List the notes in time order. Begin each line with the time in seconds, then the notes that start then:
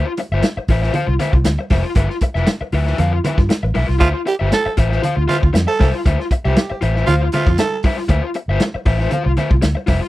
Already playing: F4
0.06 muted overdriven electric guitar stroke
0.17 muted overdriven electric guitar stroke, closed hi-hat, muted conga
0.32 G1 F4 C5 E5
0.43 muted overdriven electric guitar stroke, snare, closed hi-hat, high conga
0.57 muted fingered electric bass stroke, muted overdriven electric guitar stroke
0.68 A1 F4 C5 E5, kick, open hi-hat
0.82 F4 C5 E5, snare
0.94 F4 C5 F5, closed hi-hat, low conga
1.07 C2, muted overdriven electric guitar stroke
1.19 F4 C5 E5, snare, closed hi-hat, muted conga, low conga
1.33 C2, muted overdriven electric guitar stroke, kick
1.44 D2, muted overdriven electric guitar stroke, snare, closed hi-hat, high conga
1.59 muted overdriven electric guitar stroke
1.70 F1 F4 C5 E5, kick, snare, open hi-hat, high conga
1.84 muted overdriven electric guitar stroke
1.95 G1 F4 B4 E5, kick, closed hi-hat, muted conga
2.10 muted overdriven electric guitar stroke, snare
2.21 muted overdriven electric guitar stroke, kick, closed hi-hat, muted conga
2.35 F1 F4 B4 E5, snare
2.46 muted overdriven electric guitar stroke, snare, closed hi-hat, high conga
2.61 muted overdriven electric guitar stroke, muted fingered electric bass stroke
2.72 D2 F4 B4 E5, open hi-hat
2.86 F4 B4 E5, snare
2.98 F2 F4 B4 F5, closed hi-hat, low conga
3.13 muted overdriven electric guitar stroke
3.24 F4 B4 E5, closed hi-hat, muted conga, low conga
3.37 G2, muted overdriven electric guitar stroke, kick, snare
3.49 muted overdriven electric guitar stroke, snare, closed hi-hat, high conga
3.63 A1, muted overdriven electric guitar stroke
3.75 B1 F4 B4 E5, open hi-hat, high conga
3.88 C2, muted overdriven electric guitar stroke, snare
3.99 D2 F4 C5 E5, kick, closed hi-hat, muted conga
4.13 muted overdriven electric guitar stroke
4.26 G4, muted overdriven electric guitar stroke, closed hi-hat
4.40 G1 F4 C5 E5
4.51 A4, muted overdriven electric guitar stroke, snare, closed hi-hat, high conga
4.66 muted overdriven electric guitar stroke, muted fingered electric bass stroke
4.77 A1 F4 C5 E5, kick, closed hi-hat
4.90 F4 C5 E5, snare
5.02 F4 C5 F5, closed hi-hat, low conga
5.16 D2, muted overdriven electric guitar stroke
5.28 F4 C5 E5, snare, closed hi-hat, muted conga, low conga
5.42 D2, muted overdriven electric guitar stroke, kick
5.53 F2, muted overdriven electric guitar stroke, snare, closed hi-hat, high conga
5.67 A4, muted overdriven electric guitar stroke
5.80 C2 F4 C5 E5, kick, snare, open hi-hat, high conga
5.94 muted overdriven electric guitar stroke
6.06 D2 F4 C5 E5, kick, closed hi-hat, muted conga
6.19 muted overdriven electric guitar stroke, snare
6.31 muted overdriven electric guitar stroke, kick, closed hi-hat
6.45 C2 F4 G4 C5 E5
6.56 muted overdriven electric guitar stroke, snare, closed hi-hat, high conga
6.70 muted overdriven electric guitar stroke, muted fingered electric bass stroke
6.81 A1 F4 C5 E5, closed hi-hat
6.96 F4 C5 E5, snare
7.06 D2 F4 C5 F5, closed hi-hat, low conga
7.23 muted overdriven electric guitar stroke
7.32 F4 C5 E5, closed hi-hat, muted conga, low conga
7.46 F2, muted overdriven electric guitar stroke, kick, snare
7.58 A4, muted overdriven electric guitar stroke, snare, closed hi-hat, high conga
7.83 F4 C5 E5, kick, open hi-hat, high conga
7.97 muted overdriven electric guitar stroke, snare
8.08 D2 F4 C5 E5, kick, closed hi-hat, muted conga
8.23 muted overdriven electric guitar stroke
8.34 muted overdriven electric guitar stroke, closed hi-hat
8.48 G1 F4 C5 E5
8.60 muted overdriven electric guitar stroke, snare, closed hi-hat, high conga
8.75 muted overdriven electric guitar stroke, muted fingered electric bass stroke
8.85 A1 F4 C5 E5, kick, open hi-hat
8.98 F4 C5 E5, snare
9.11 F4 C5 F5, closed hi-hat, low conga
9.25 C2, muted overdriven electric guitar stroke
9.37 F4 C5 E5, snare, closed hi-hat, muted conga, low conga
9.50 C2, muted overdriven electric guitar stroke, kick
9.62 D2, muted overdriven electric guitar stroke, snare, closed hi-hat, high conga
9.75 muted overdriven electric guitar stroke
9.87 F1 F4 C5 E5, kick, snare, open hi-hat, high conga
10.02 muted overdriven electric guitar stroke